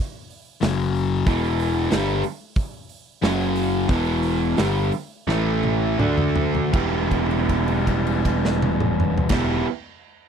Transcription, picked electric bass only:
0.63 1.23 F#1 medium
1.27 1.87 E1 loud
1.93 2.22 G1 medium
3.23 3.86 F#1 medium
3.89 4.54 E1 loud
4.58 4.90 G1 medium
5.27 5.95 A1 loud
6.00 6.70 D2 medium
6.74 9.18 E1 loud
9.30 9.62 E1 medium

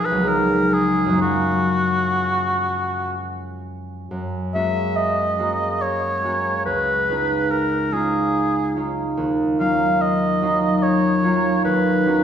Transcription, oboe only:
0.05 0.30 B4 medium
0.28 0.75 A#4 medium
0.74 1.21 G#4 medium
1.21 3.12 F#4 medium
4.54 4.98 E5 medium
4.96 5.83 D#5 medium
5.82 6.65 C#5 medium
6.66 7.53 B4 medium
7.51 7.94 A#4 medium
7.93 8.76 G#4 soft
9.60 10.03 F5 medium
10.02 10.84 D#5 medium
10.83 11.64 C#5 medium
11.65 12.24 B4 medium

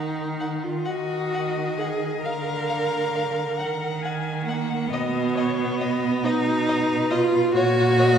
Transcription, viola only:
0.00 0.65 D#4 medium
0.63 0.88 F4 medium
0.87 1.79 F#4 medium
1.78 2.22 G#4 medium
2.23 3.99 A#4 medium
4.44 4.89 A#3 medium
4.87 6.25 B3 medium
6.23 7.12 D#4 medium
7.10 7.53 F4 medium
7.54 8.18 F#4 loud

